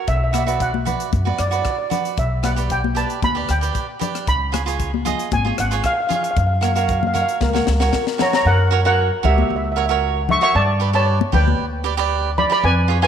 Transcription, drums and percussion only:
0.08 kick medium
0.08 closed hi-hat medium
0.34 cross-stick medium
0.34 closed hi-hat medium
0.34 high conga medium
0.48 closed hi-hat medium
0.60 kick medium
0.60 closed hi-hat medium
0.74 high conga medium
0.86 closed hi-hat medium
0.86 low conga medium
1.00 closed hi-hat medium
1.13 kick medium
1.13 closed hi-hat soft
1.13 high conga medium
1.27 high conga medium
1.39 cross-stick medium
1.39 closed hi-hat medium
1.52 closed hi-hat medium
1.65 kick medium
1.65 cross-stick medium
1.65 closed hi-hat soft
1.91 closed hi-hat medium
1.91 low conga medium
2.05 closed hi-hat soft
2.17 kick medium
2.17 closed hi-hat soft
2.44 cross-stick medium
2.44 closed hi-hat medium
2.44 high conga medium
2.57 closed hi-hat medium
2.70 kick medium
2.70 closed hi-hat medium
2.84 high conga medium
2.96 closed hi-hat medium
3.10 closed hi-hat soft
3.22 kick medium
3.22 closed hi-hat soft
3.22 high conga medium
3.49 cross-stick medium
3.49 closed hi-hat medium
3.63 closed hi-hat medium
3.75 kick medium
3.75 closed hi-hat medium
4.01 closed hi-hat medium
4.01 low conga medium
4.15 cross-stick medium
4.15 closed hi-hat medium
4.27 kick medium
4.27 closed hi-hat medium
4.54 cross-stick medium
4.54 closed hi-hat medium
4.54 high conga medium
4.67 closed hi-hat medium
4.80 kick medium
4.80 closed hi-hat medium
4.94 high conga medium
5.06 closed hi-hat medium
5.06 low conga medium
5.19 closed hi-hat medium
5.32 kick medium
5.32 closed hi-hat medium
5.32 high conga medium
5.46 high conga medium
5.58 cross-stick medium
5.58 closed hi-hat medium
5.72 closed hi-hat medium
5.84 kick medium
5.84 cross-stick medium
5.84 closed hi-hat medium
6.10 closed hi-hat medium
6.10 low conga medium
6.24 closed hi-hat medium
6.36 kick medium
6.36 closed hi-hat soft
6.63 cross-stick medium
6.63 closed hi-hat medium
6.63 high conga medium
6.76 closed hi-hat medium
6.89 kick medium
6.89 closed hi-hat medium
7.03 high conga medium
7.03 low conga medium
7.15 closed hi-hat medium
7.15 low conga medium
7.29 closed hi-hat medium
7.41 kick medium
7.41 snare soft
7.41 high conga medium
7.55 snare soft
7.55 high conga medium
7.67 snare medium
7.80 snare medium
7.93 kick medium
7.93 snare medium
8.07 snare medium
8.19 snare medium
8.19 low conga medium
8.33 snare medium
9.25 low conga medium
9.38 high conga medium
10.29 low conga medium
11.21 high conga medium
11.33 low conga medium
11.48 high conga medium
12.38 low conga medium

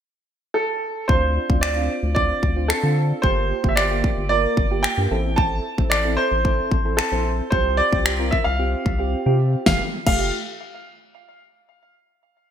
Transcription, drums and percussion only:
1.09 kick loud
1.50 kick medium
1.63 finger snap loud
2.16 kick medium
2.43 kick medium
2.70 finger snap loud
3.24 kick loud
3.64 kick medium
3.77 finger snap loud
4.04 kick medium
4.57 kick medium
4.84 finger snap loud
5.38 kick loud
5.78 kick medium
5.92 finger snap loud
6.45 kick medium
6.72 kick medium
6.99 finger snap loud
7.52 kick loud
7.93 kick medium
8.06 finger snap loud
8.33 kick medium
8.86 kick medium
9.66 kick loud
9.66 snare medium
10.07 kick loud
10.07 crash medium

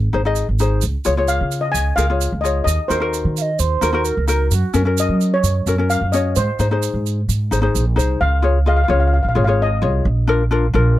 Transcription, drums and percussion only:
0.36 shaker medium
0.59 shaker medium
0.82 shaker medium
1.05 shaker medium
1.28 shaker medium
1.51 shaker medium
1.75 shaker medium
1.98 shaker medium
2.21 shaker medium
2.45 shaker medium
2.68 shaker medium
2.91 shaker medium
3.14 shaker medium
3.37 shaker medium
3.59 shaker medium
3.82 shaker medium
4.05 shaker medium
4.28 shaker medium
4.51 shaker medium
4.74 shaker medium
4.97 shaker medium
5.21 shaker medium
5.44 shaker medium
5.67 shaker medium
5.90 shaker medium
6.13 shaker medium
6.36 shaker medium
6.59 shaker medium
6.82 shaker medium
7.06 shaker medium
7.29 shaker medium
7.52 shaker medium
7.75 shaker medium
7.99 shaker medium

